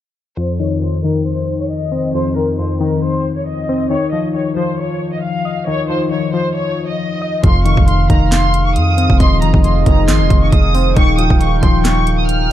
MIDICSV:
0, 0, Header, 1, 7, 480
1, 0, Start_track
1, 0, Key_signature, -4, "minor"
1, 0, Tempo, 441176
1, 410, Time_signature, 4, 2, 24, 8
1, 13625, End_track
2, 0, Start_track
2, 0, Title_t, "Soft synth lead"
2, 0, Program_c, 0, 80
2, 8088, Note_on_c, 0, 77, 119
2, 9966, Note_off_c, 0, 77, 0
2, 10009, Note_on_c, 0, 75, 112
2, 11646, Note_off_c, 0, 75, 0
2, 11690, Note_on_c, 0, 72, 80
2, 11918, Note_off_c, 0, 72, 0
2, 11928, Note_on_c, 0, 79, 108
2, 13625, Note_off_c, 0, 79, 0
2, 13625, End_track
3, 0, Start_track
3, 0, Title_t, "Violin section"
3, 0, Program_c, 1, 48
3, 411, Note_on_c, 1, 72, 92
3, 605, Note_off_c, 1, 72, 0
3, 652, Note_on_c, 1, 73, 78
3, 846, Note_off_c, 1, 73, 0
3, 891, Note_on_c, 1, 72, 85
3, 1085, Note_off_c, 1, 72, 0
3, 1133, Note_on_c, 1, 70, 79
3, 1326, Note_off_c, 1, 70, 0
3, 1371, Note_on_c, 1, 72, 84
3, 1716, Note_off_c, 1, 72, 0
3, 1742, Note_on_c, 1, 73, 71
3, 1831, Note_off_c, 1, 73, 0
3, 1853, Note_on_c, 1, 75, 82
3, 2303, Note_off_c, 1, 75, 0
3, 2329, Note_on_c, 1, 72, 110
3, 2524, Note_off_c, 1, 72, 0
3, 2571, Note_on_c, 1, 70, 79
3, 2766, Note_off_c, 1, 70, 0
3, 2809, Note_on_c, 1, 72, 67
3, 3004, Note_off_c, 1, 72, 0
3, 3049, Note_on_c, 1, 70, 82
3, 3244, Note_off_c, 1, 70, 0
3, 3291, Note_on_c, 1, 72, 82
3, 3636, Note_off_c, 1, 72, 0
3, 3659, Note_on_c, 1, 73, 74
3, 3750, Note_off_c, 1, 73, 0
3, 3773, Note_on_c, 1, 75, 77
3, 4223, Note_off_c, 1, 75, 0
3, 4254, Note_on_c, 1, 73, 109
3, 4447, Note_off_c, 1, 73, 0
3, 4491, Note_on_c, 1, 75, 81
3, 4686, Note_off_c, 1, 75, 0
3, 4732, Note_on_c, 1, 73, 76
3, 4926, Note_off_c, 1, 73, 0
3, 4971, Note_on_c, 1, 72, 83
3, 5166, Note_off_c, 1, 72, 0
3, 5211, Note_on_c, 1, 73, 79
3, 5556, Note_off_c, 1, 73, 0
3, 5578, Note_on_c, 1, 75, 73
3, 5670, Note_off_c, 1, 75, 0
3, 5689, Note_on_c, 1, 77, 77
3, 6141, Note_off_c, 1, 77, 0
3, 6170, Note_on_c, 1, 73, 108
3, 6365, Note_off_c, 1, 73, 0
3, 6410, Note_on_c, 1, 72, 90
3, 6605, Note_off_c, 1, 72, 0
3, 6651, Note_on_c, 1, 73, 79
3, 6845, Note_off_c, 1, 73, 0
3, 6892, Note_on_c, 1, 72, 90
3, 7086, Note_off_c, 1, 72, 0
3, 7128, Note_on_c, 1, 73, 85
3, 7474, Note_off_c, 1, 73, 0
3, 7496, Note_on_c, 1, 75, 76
3, 8054, Note_off_c, 1, 75, 0
3, 8090, Note_on_c, 1, 84, 98
3, 8285, Note_off_c, 1, 84, 0
3, 8331, Note_on_c, 1, 85, 88
3, 8525, Note_off_c, 1, 85, 0
3, 8570, Note_on_c, 1, 84, 86
3, 8765, Note_off_c, 1, 84, 0
3, 8813, Note_on_c, 1, 82, 83
3, 9006, Note_off_c, 1, 82, 0
3, 9049, Note_on_c, 1, 84, 93
3, 9395, Note_off_c, 1, 84, 0
3, 9420, Note_on_c, 1, 85, 77
3, 9511, Note_off_c, 1, 85, 0
3, 9533, Note_on_c, 1, 87, 86
3, 9983, Note_off_c, 1, 87, 0
3, 10008, Note_on_c, 1, 84, 118
3, 10204, Note_off_c, 1, 84, 0
3, 10252, Note_on_c, 1, 82, 84
3, 10446, Note_off_c, 1, 82, 0
3, 10490, Note_on_c, 1, 84, 68
3, 10685, Note_off_c, 1, 84, 0
3, 10730, Note_on_c, 1, 82, 88
3, 10925, Note_off_c, 1, 82, 0
3, 10972, Note_on_c, 1, 84, 85
3, 11317, Note_off_c, 1, 84, 0
3, 11339, Note_on_c, 1, 85, 76
3, 11430, Note_off_c, 1, 85, 0
3, 11454, Note_on_c, 1, 87, 82
3, 11903, Note_off_c, 1, 87, 0
3, 11935, Note_on_c, 1, 85, 117
3, 12128, Note_off_c, 1, 85, 0
3, 12173, Note_on_c, 1, 87, 86
3, 12367, Note_off_c, 1, 87, 0
3, 12414, Note_on_c, 1, 85, 78
3, 12607, Note_off_c, 1, 85, 0
3, 12653, Note_on_c, 1, 84, 88
3, 12847, Note_off_c, 1, 84, 0
3, 12893, Note_on_c, 1, 85, 88
3, 13237, Note_off_c, 1, 85, 0
3, 13258, Note_on_c, 1, 87, 79
3, 13349, Note_off_c, 1, 87, 0
3, 13369, Note_on_c, 1, 89, 80
3, 13625, Note_off_c, 1, 89, 0
3, 13625, End_track
4, 0, Start_track
4, 0, Title_t, "Ambient pad"
4, 0, Program_c, 2, 92
4, 8090, Note_on_c, 2, 53, 86
4, 8090, Note_on_c, 2, 63, 75
4, 8090, Note_on_c, 2, 68, 78
4, 8090, Note_on_c, 2, 77, 94
4, 11892, Note_off_c, 2, 53, 0
4, 11892, Note_off_c, 2, 68, 0
4, 11930, Note_on_c, 2, 70, 78
4, 11931, Note_on_c, 2, 51, 81
4, 13625, Note_off_c, 2, 51, 0
4, 13625, Note_off_c, 2, 63, 0
4, 13625, Note_off_c, 2, 70, 0
4, 13625, Note_off_c, 2, 77, 0
4, 13625, End_track
5, 0, Start_track
5, 0, Title_t, "Synth keys"
5, 0, Program_c, 3, 88
5, 405, Note_on_c, 3, 41, 91
5, 623, Control_c, 3, 64, 127
5, 646, Note_on_c, 3, 51, 73
5, 874, Note_off_c, 3, 41, 0
5, 887, Note_on_c, 3, 41, 71
5, 1120, Note_off_c, 3, 51, 0
5, 1133, Note_on_c, 3, 51, 86
5, 2086, Note_on_c, 3, 60, 76
5, 2089, Note_off_c, 3, 41, 0
5, 2331, Note_on_c, 3, 41, 77
5, 2332, Note_off_c, 3, 51, 0
5, 2570, Note_on_c, 3, 51, 70
5, 2803, Note_off_c, 3, 41, 0
5, 2816, Note_on_c, 3, 41, 70
5, 3037, Note_off_c, 3, 51, 0
5, 3050, Note_on_c, 3, 51, 88
5, 3288, Note_off_c, 3, 60, 0
5, 4013, Note_off_c, 3, 41, 0
5, 4014, Note_on_c, 3, 60, 88
5, 4235, Note_off_c, 3, 51, 0
5, 4248, Note_on_c, 3, 51, 92
5, 4252, Note_off_c, 3, 60, 0
5, 4267, Control_c, 3, 64, 0
5, 4431, Control_c, 3, 64, 127
5, 4488, Note_on_c, 3, 53, 69
5, 4713, Note_off_c, 3, 51, 0
5, 4726, Note_on_c, 3, 51, 69
5, 4954, Note_off_c, 3, 53, 0
5, 4967, Note_on_c, 3, 53, 87
5, 5928, Note_off_c, 3, 51, 0
5, 5930, Note_on_c, 3, 75, 76
5, 6169, Note_off_c, 3, 53, 0
5, 6169, Note_on_c, 3, 51, 91
5, 6413, Note_on_c, 3, 53, 75
5, 6638, Note_off_c, 3, 51, 0
5, 6651, Note_on_c, 3, 51, 68
5, 6881, Note_off_c, 3, 53, 0
5, 6894, Note_on_c, 3, 53, 85
5, 7130, Note_off_c, 3, 75, 0
5, 7851, Note_off_c, 3, 51, 0
5, 7851, Note_on_c, 3, 75, 85
5, 8085, Note_on_c, 3, 41, 99
5, 8091, Note_off_c, 3, 75, 0
5, 8092, Note_off_c, 3, 53, 0
5, 8105, Control_c, 3, 64, 0
5, 8310, Control_c, 3, 64, 127
5, 8326, Note_on_c, 3, 51, 81
5, 8554, Note_off_c, 3, 41, 0
5, 8567, Note_on_c, 3, 41, 72
5, 8799, Note_off_c, 3, 51, 0
5, 8812, Note_on_c, 3, 51, 91
5, 9765, Note_on_c, 3, 60, 79
5, 9769, Note_off_c, 3, 41, 0
5, 10011, Note_off_c, 3, 51, 0
5, 10011, Note_on_c, 3, 41, 85
5, 10250, Note_on_c, 3, 51, 76
5, 10484, Note_off_c, 3, 41, 0
5, 10497, Note_on_c, 3, 41, 72
5, 10718, Note_off_c, 3, 51, 0
5, 10731, Note_on_c, 3, 51, 93
5, 10968, Note_off_c, 3, 60, 0
5, 11694, Note_off_c, 3, 41, 0
5, 11694, Note_on_c, 3, 60, 89
5, 11916, Note_off_c, 3, 51, 0
5, 11929, Note_on_c, 3, 51, 94
5, 11933, Note_off_c, 3, 60, 0
5, 11946, Control_c, 3, 64, 0
5, 12120, Control_c, 3, 64, 127
5, 12169, Note_on_c, 3, 53, 75
5, 12393, Note_off_c, 3, 51, 0
5, 12406, Note_on_c, 3, 51, 71
5, 12635, Note_off_c, 3, 53, 0
5, 12648, Note_on_c, 3, 53, 91
5, 13609, Note_off_c, 3, 51, 0
5, 13625, Note_off_c, 3, 53, 0
5, 13625, End_track
6, 0, Start_track
6, 0, Title_t, "808-style bass"
6, 0, Program_c, 4, 38
6, 8091, Note_on_c, 4, 29, 117
6, 8443, Note_off_c, 4, 29, 0
6, 8457, Note_on_c, 4, 29, 97
6, 8796, Note_off_c, 4, 29, 0
6, 8810, Note_on_c, 4, 29, 102
6, 9530, Note_on_c, 4, 41, 99
6, 9546, Note_off_c, 4, 29, 0
6, 9879, Note_off_c, 4, 41, 0
6, 9897, Note_on_c, 4, 29, 105
6, 10137, Note_on_c, 4, 27, 101
6, 10153, Note_off_c, 4, 29, 0
6, 10250, Note_on_c, 4, 29, 101
6, 10266, Note_off_c, 4, 27, 0
6, 10371, Note_off_c, 4, 29, 0
6, 10377, Note_on_c, 4, 29, 98
6, 10716, Note_off_c, 4, 29, 0
6, 10731, Note_on_c, 4, 29, 105
6, 10971, Note_on_c, 4, 32, 101
6, 10987, Note_off_c, 4, 29, 0
6, 11097, Note_on_c, 4, 29, 98
6, 11114, Note_off_c, 4, 32, 0
6, 11205, Note_off_c, 4, 29, 0
6, 11210, Note_on_c, 4, 29, 104
6, 11441, Note_off_c, 4, 29, 0
6, 11451, Note_on_c, 4, 29, 107
6, 11911, Note_off_c, 4, 29, 0
6, 11931, Note_on_c, 4, 27, 118
6, 12283, Note_off_c, 4, 27, 0
6, 12298, Note_on_c, 4, 27, 100
6, 12636, Note_off_c, 4, 27, 0
6, 12651, Note_on_c, 4, 27, 100
6, 13625, Note_off_c, 4, 27, 0
6, 13625, End_track
7, 0, Start_track
7, 0, Title_t, "Drums"
7, 8090, Note_on_c, 9, 36, 112
7, 8090, Note_on_c, 9, 42, 77
7, 8199, Note_off_c, 9, 36, 0
7, 8199, Note_off_c, 9, 42, 0
7, 8330, Note_on_c, 9, 42, 74
7, 8438, Note_off_c, 9, 42, 0
7, 8457, Note_on_c, 9, 36, 95
7, 8566, Note_off_c, 9, 36, 0
7, 8570, Note_on_c, 9, 42, 80
7, 8679, Note_off_c, 9, 42, 0
7, 8811, Note_on_c, 9, 36, 91
7, 8811, Note_on_c, 9, 42, 73
7, 8919, Note_off_c, 9, 36, 0
7, 8920, Note_off_c, 9, 42, 0
7, 9051, Note_on_c, 9, 38, 125
7, 9052, Note_on_c, 9, 42, 90
7, 9056, Note_on_c, 9, 39, 104
7, 9159, Note_off_c, 9, 38, 0
7, 9161, Note_off_c, 9, 42, 0
7, 9165, Note_off_c, 9, 39, 0
7, 9291, Note_on_c, 9, 42, 70
7, 9399, Note_off_c, 9, 42, 0
7, 9530, Note_on_c, 9, 42, 82
7, 9639, Note_off_c, 9, 42, 0
7, 9771, Note_on_c, 9, 42, 78
7, 9879, Note_off_c, 9, 42, 0
7, 9897, Note_on_c, 9, 36, 96
7, 10006, Note_off_c, 9, 36, 0
7, 10010, Note_on_c, 9, 42, 83
7, 10011, Note_on_c, 9, 36, 118
7, 10119, Note_off_c, 9, 36, 0
7, 10119, Note_off_c, 9, 42, 0
7, 10250, Note_on_c, 9, 42, 73
7, 10359, Note_off_c, 9, 42, 0
7, 10377, Note_on_c, 9, 36, 90
7, 10486, Note_off_c, 9, 36, 0
7, 10490, Note_on_c, 9, 42, 81
7, 10599, Note_off_c, 9, 42, 0
7, 10731, Note_on_c, 9, 36, 94
7, 10731, Note_on_c, 9, 42, 74
7, 10839, Note_off_c, 9, 36, 0
7, 10840, Note_off_c, 9, 42, 0
7, 10971, Note_on_c, 9, 38, 125
7, 10972, Note_on_c, 9, 42, 91
7, 10976, Note_on_c, 9, 39, 97
7, 11079, Note_off_c, 9, 38, 0
7, 11081, Note_off_c, 9, 42, 0
7, 11085, Note_off_c, 9, 39, 0
7, 11210, Note_on_c, 9, 36, 95
7, 11211, Note_on_c, 9, 42, 71
7, 11319, Note_off_c, 9, 36, 0
7, 11320, Note_off_c, 9, 42, 0
7, 11450, Note_on_c, 9, 36, 102
7, 11451, Note_on_c, 9, 42, 82
7, 11559, Note_off_c, 9, 36, 0
7, 11560, Note_off_c, 9, 42, 0
7, 11691, Note_on_c, 9, 46, 77
7, 11800, Note_off_c, 9, 46, 0
7, 11930, Note_on_c, 9, 42, 80
7, 11931, Note_on_c, 9, 36, 119
7, 12039, Note_off_c, 9, 36, 0
7, 12039, Note_off_c, 9, 42, 0
7, 12170, Note_on_c, 9, 42, 75
7, 12279, Note_off_c, 9, 42, 0
7, 12297, Note_on_c, 9, 36, 95
7, 12406, Note_off_c, 9, 36, 0
7, 12410, Note_on_c, 9, 42, 82
7, 12519, Note_off_c, 9, 42, 0
7, 12651, Note_on_c, 9, 36, 90
7, 12651, Note_on_c, 9, 42, 76
7, 12760, Note_off_c, 9, 36, 0
7, 12760, Note_off_c, 9, 42, 0
7, 12891, Note_on_c, 9, 38, 123
7, 12892, Note_on_c, 9, 42, 90
7, 12897, Note_on_c, 9, 39, 103
7, 13000, Note_off_c, 9, 38, 0
7, 13001, Note_off_c, 9, 42, 0
7, 13005, Note_off_c, 9, 39, 0
7, 13131, Note_on_c, 9, 42, 69
7, 13240, Note_off_c, 9, 42, 0
7, 13371, Note_on_c, 9, 42, 82
7, 13480, Note_off_c, 9, 42, 0
7, 13625, End_track
0, 0, End_of_file